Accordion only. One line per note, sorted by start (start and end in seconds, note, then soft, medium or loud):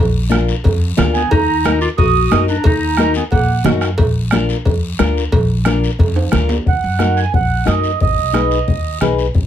1.14 1.30 G#5 medium
1.30 1.83 A#5 medium
1.82 1.89 D6 medium
1.98 2.45 D#6 loud
2.49 2.64 A#5 medium
2.65 3.12 A#5 loud
3.16 3.24 G#5 medium
3.31 3.63 F#5 medium
6.69 7.19 F#5 medium
7.17 7.32 G#5 medium
7.35 7.66 F#5 loud
7.68 7.99 D#5 medium
8.02 8.98 D#5 medium